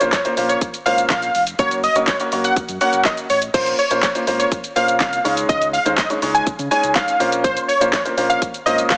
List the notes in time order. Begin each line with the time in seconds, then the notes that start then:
0.01 A#1 A#3 C#4 F4 C5, closed hi-hat, shaker
0.12 C#5, kick, snare, clap, closed hi-hat, shaker
0.25 A#3 C#4 F4 C5, closed hi-hat, shaker
0.37 A#1 A#3 C#4 F4 C5, open hi-hat, shaker
0.49 C#5, closed hi-hat, shaker
0.61 kick, closed hi-hat, shaker
0.74 closed hi-hat, shaker
0.86 G#1 A#3 C#4 F4 C5 F5, open hi-hat, shaker
0.98 closed hi-hat, shaker
1.10 A#1 F5, kick, snare, clap, closed hi-hat, shaker
1.22 closed hi-hat, shaker
1.34 F1, open hi-hat, shaker
1.47 closed hi-hat, shaker
1.59 F#1 A#3 C#4 F#4 C#5, kick, closed hi-hat, shaker
1.71 closed hi-hat, shaker
1.84 D#5, open hi-hat, shaker
1.96 F#1 A#3 C#4 F#4 C#5, closed hi-hat, shaker
2.07 C#5, kick, snare, clap, closed hi-hat, shaker
2.20 A#3 C#4 F#4 C#5, closed hi-hat, shaker
2.32 F#1 A#3 C#4 F#4 C#5, open hi-hat, shaker
2.44 F#5, closed hi-hat, shaker
2.56 F#2, kick, closed hi-hat, shaker
2.69 F#2, closed hi-hat, shaker
2.81 A#3 C#4 F#4 C#5 F#5, open hi-hat, shaker
2.93 F#1, closed hi-hat, shaker
3.05 D#5, kick, snare, clap, closed hi-hat, shaker
3.17 closed hi-hat, shaker
3.30 A1 C#5, open hi-hat, shaker
3.42 closed hi-hat, shaker
3.54 A#1 A#3 C#4 F4 C5, kick, closed hi-hat, crash, shaker
3.66 closed hi-hat, shaker
3.79 C#5, open hi-hat, shaker
3.91 A#1 A#3 C#4 F4 C5, closed hi-hat, shaker
4.03 C#5, kick, snare, clap, closed hi-hat, shaker
4.15 A#3 C#4 F4 C5, closed hi-hat, shaker
4.27 G#1 A#3 C#4 F4 C5, open hi-hat, shaker
4.39 C#5, closed hi-hat, shaker
4.52 kick, closed hi-hat, shaker
4.64 closed hi-hat, shaker
4.76 A#1 A#3 C#4 F4 C5 F5, open hi-hat, shaker
4.88 closed hi-hat, shaker
5.00 C2 F5, kick, snare, clap, closed hi-hat, shaker
5.13 closed hi-hat, shaker
5.24 C#2 G#3 C#4 D#4 C#5, open hi-hat, shaker
5.37 closed hi-hat, shaker
5.49 C#2 D#5, kick, closed hi-hat, shaker
5.62 closed hi-hat, shaker
5.73 F5, open hi-hat, shaker
5.85 D#2 G#3 C#4 D#4 C5, closed hi-hat, shaker
5.98 D#5, kick, snare, clap, closed hi-hat, shaker
6.10 G#3 C#4 D#4 C#5, closed hi-hat, shaker
6.22 C#2 G#3 C#4 D#4 C#5, open hi-hat, shaker
6.34 G#5, closed hi-hat, shaker
6.47 C#3, kick, closed hi-hat, shaker
6.59 C#3, closed hi-hat, shaker
6.71 G#3 C#4 D#4 C#5 G#5, open hi-hat, shaker
6.83 C#2, closed hi-hat, shaker
6.95 F5, kick, snare, clap, closed hi-hat, shaker
7.08 closed hi-hat, shaker
7.20 A#1 A#3 C#4 F4 C5, open hi-hat, shaker
7.32 closed hi-hat, shaker
7.44 C5, kick, closed hi-hat, shaker
7.57 closed hi-hat, shaker
7.68 C#5, open hi-hat, shaker
7.80 A#1 A#3 C#4 F4 C5, closed hi-hat, shaker
7.93 C#5, kick, snare, clap, closed hi-hat, shaker
8.05 A#3 C#4 F4 C5, closed hi-hat, shaker
8.17 A#1 A#3 C#4 F4 C5, open hi-hat, shaker
8.30 F5, closed hi-hat, shaker
8.42 kick, closed hi-hat, shaker
8.54 closed hi-hat, shaker
8.66 G#1 A#3 C#4 F4 C5 D#5, open hi-hat, shaker
8.78 closed hi-hat, shaker
8.90 A#1 F5, kick, snare, clap, closed hi-hat, shaker